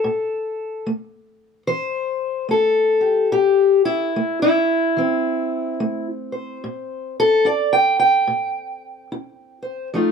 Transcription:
0.00 0.86 A4 loud
0.04 0.80 A2 medium
0.86 1.62 A3 medium
1.67 2.44 E3 medium
1.67 2.50 C5 medium
2.49 3.26 A3 medium
2.49 3.33 A4 medium
3.01 3.32 G4 soft
3.32 4.09 A2 medium
3.32 3.85 G4 medium
3.85 4.41 E4 medium
4.16 4.92 A3 medium
4.42 6.07 E4 medium
4.97 5.73 E3 medium
4.97 9.92 C4 medium
5.80 6.56 A3 medium
6.32 7.19 C5 soft
6.64 7.39 A2 medium
7.20 7.46 A4 loud
7.45 8.21 E4 medium
7.45 7.73 D5 medium
7.73 7.98 G5 medium
7.99 10.12 G5 medium
8.27 9.04 A2 medium
9.12 9.87 E4 medium
9.62 9.89 C5 soft
9.94 10.12 F3 medium
9.94 10.12 A3 soft
9.94 10.12 D#4 medium
9.94 10.12 F4 soft

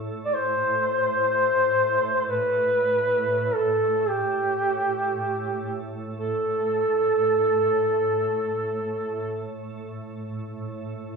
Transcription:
0.00 11.03 A2 soft
0.25 0.35 D5 medium
0.34 2.28 C5 medium
2.29 3.56 B4 medium
3.55 4.10 A4 medium
4.09 5.85 G4 medium
6.18 9.49 A4 medium

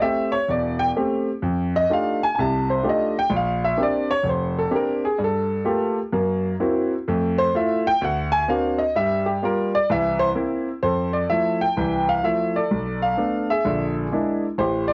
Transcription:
0.01 0.33 A3 medium
0.01 0.34 C4 medium
0.01 0.34 G4 medium
0.01 0.31 E5 medium
0.32 0.47 C#5 medium
0.48 0.89 E1 medium
0.48 0.79 D5 medium
0.79 0.89 G5 loud
0.96 1.28 A3 medium
0.96 1.28 C4 medium
0.96 1.28 G4 medium
1.42 1.83 F2 medium
1.76 1.90 D#5 loud
1.90 2.22 A3 soft
1.90 2.22 D4 medium
1.90 2.22 D#4 soft
1.90 2.22 F4 soft
1.90 2.22 G4 medium
1.90 2.21 F5 medium
2.23 2.34 G#5 loud
2.35 2.78 C2 medium
2.35 2.78 C3 medium
2.35 2.38 G#5 medium
2.40 2.68 A5 medium
2.70 2.84 C5 medium
2.84 3.16 A3 medium
2.84 3.16 D4 medium
2.84 3.16 D#4 soft
2.84 3.16 F4 medium
2.84 3.16 G4 medium
2.89 3.16 D#5 medium
3.19 3.32 G5 loud
3.30 3.71 A#1 medium
3.36 3.63 F5 medium
3.64 3.79 E5 medium
3.77 4.10 A#3 soft
3.77 4.10 C4 soft
3.77 4.10 D4 soft
3.77 4.10 G4 medium
3.83 4.10 D5 medium
4.11 4.25 C#5 loud
4.23 4.64 F1 medium
4.29 4.57 C5 medium
4.59 4.73 A4 medium
4.71 5.04 A#3 medium
4.71 5.04 C4 medium
4.71 5.04 D4 medium
4.71 5.04 G4 medium
4.76 5.03 A#4 medium
5.05 5.19 G#4 medium
5.18 5.59 G2 medium
5.24 5.95 A4 medium
5.64 5.97 A3 medium
5.64 5.97 A#3 soft
5.64 5.97 F4 soft
5.64 5.98 G4 medium
6.12 6.53 F#2 medium
6.12 6.53 A#3 medium
6.60 6.92 A#3 medium
6.60 6.92 C4 medium
6.60 6.92 E4 medium
6.60 6.92 F#4 medium
7.08 7.48 F2 medium
7.08 7.48 A3 medium
7.38 7.53 C5 loud
7.55 7.86 A3 medium
7.55 7.87 E4 medium
7.55 7.86 F4 medium
7.55 7.85 E5 medium
7.87 8.01 G5 loud
8.01 8.41 D2 medium
8.01 8.32 F#5 medium
8.32 8.47 G#5 loud
8.48 8.80 A#3 medium
8.48 8.80 C4 medium
8.48 8.80 D4 medium
8.48 8.80 F#4 medium
8.48 8.78 F5 medium
8.78 8.94 D#5 medium
8.96 9.36 G2 medium
8.96 9.36 G3 medium
8.96 9.25 E5 loud
9.26 9.41 G4 medium
9.42 9.74 G3 medium
9.42 9.74 A#3 medium
9.42 9.74 F4 medium
9.42 9.73 A#4 medium
9.75 9.89 D5 loud
9.90 10.30 C2 medium
9.90 10.30 E3 medium
9.90 10.20 E5 loud
10.19 10.29 C5 loud
10.35 10.68 A#3 medium
10.35 10.68 C4 medium
10.35 10.68 E4 medium
10.83 11.23 F2 medium
10.83 11.73 A4 medium
10.83 11.14 C5 medium
11.13 11.30 D5 medium
11.30 11.62 F3 soft
11.30 11.62 A3 soft
11.30 11.63 E4 medium
11.30 11.58 E5 medium
11.61 12.09 G5 loud
11.77 12.17 C2 medium
11.77 12.18 E3 medium
12.09 12.25 F5 medium
12.23 12.56 F3 soft
12.23 12.56 A3 soft
12.23 12.56 E4 medium
12.23 12.55 E5 medium
12.56 13.46 A4 medium
12.56 13.03 D5 medium
12.71 13.11 B1 medium
13.03 13.46 F5 medium
13.18 13.50 A3 soft
13.18 13.50 B3 soft
13.18 13.50 D4 medium
13.50 14.39 G#4 medium
13.50 13.93 E5 medium
13.65 14.05 A#1 medium
13.65 14.06 D3 medium
14.12 14.44 G#3 medium
14.12 14.44 A#3 soft
14.12 14.45 D4 medium
14.12 14.44 E4 medium
14.58 14.93 A1 medium
14.58 14.93 G4 medium
14.58 14.90 C5 medium
14.88 14.93 D5 medium

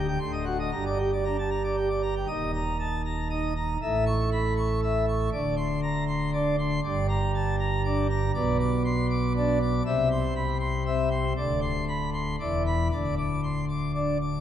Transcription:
0.00 0.18 D1 medium
0.00 0.17 D2 medium
0.08 0.19 G5 medium
0.19 0.71 D1 medium
0.19 0.71 D2 medium
0.19 0.32 C6 medium
0.33 0.45 D#5 medium
0.45 0.58 F#4 medium
0.59 0.71 D#5 medium
0.72 2.25 G1 medium
0.72 2.25 G2 medium
0.72 0.84 A#5 medium
0.86 0.98 D5 medium
0.99 1.11 G4 medium
1.13 1.24 D5 medium
1.25 1.37 D4 medium
1.25 1.37 A#5 medium
1.39 1.50 A5 soft
1.51 1.63 A#5 medium
1.64 1.76 D5 soft
1.76 1.89 G4 medium
1.90 2.02 D5 soft
2.03 2.15 A#5 medium
2.16 2.27 G4 medium
2.28 3.77 D#1 medium
2.28 3.77 D#2 medium
2.28 2.51 D#5 medium
2.54 2.77 A#5 medium
2.80 3.02 A5 medium
3.05 3.28 A#5 medium
3.30 3.53 D#4 medium
3.30 3.53 D#5 medium
3.56 3.78 A#5 medium
3.82 5.29 A1 medium
3.82 5.29 A2 medium
3.82 4.05 E5 medium
4.06 4.29 C#6 medium
4.32 4.54 B5 medium
4.57 4.80 C#6 medium
4.83 5.05 E5 medium
5.08 5.29 C#6 medium
5.33 6.80 D1 medium
5.33 6.80 D2 medium
5.33 5.55 D5 medium
5.57 5.80 C6 medium
5.83 6.04 A#5 medium
6.08 6.31 C6 medium
6.33 6.56 D4 medium
6.33 6.56 D5 medium
6.59 6.80 C6 medium
6.84 8.31 G1 medium
6.84 8.31 G2 medium
6.84 7.07 D5 medium
7.09 7.31 A#5 medium
7.34 7.56 A5 medium
7.59 7.82 A#5 medium
7.85 8.07 D4 medium
7.85 8.07 D5 medium
8.11 8.32 A#5 medium
8.35 9.81 B1 medium
8.35 9.82 B2 medium
8.35 8.57 D5 medium
8.60 8.83 D6 loud
8.85 9.07 C6 medium
9.10 9.33 D6 medium
9.37 9.59 D4 medium
9.37 9.58 D5 medium
9.62 9.83 D6 medium
9.86 11.33 C2 medium
9.86 11.34 C3 medium
9.86 10.08 E5 medium
10.12 10.34 C6 medium
10.36 10.57 B5 medium
10.60 10.83 C6 medium
10.87 11.09 C4 medium
10.87 11.09 E5 medium
11.11 11.33 C6 medium
11.37 12.36 D1 medium
11.37 12.36 D2 medium
11.37 11.60 D5 medium
11.62 11.85 C6 medium
11.88 12.10 B5 medium
12.14 12.36 C6 medium
12.40 12.90 E1 medium
12.40 12.89 E2 medium
12.40 12.63 D5 medium
12.66 12.88 B5 medium
12.91 14.40 D1 medium
12.91 14.40 D2 medium
12.91 13.14 D5 medium
13.18 13.40 D6 medium
13.44 13.65 C6 medium
13.69 13.92 D6 medium
13.95 14.17 D4 medium
13.95 14.18 D5 medium
14.22 14.40 D6 medium

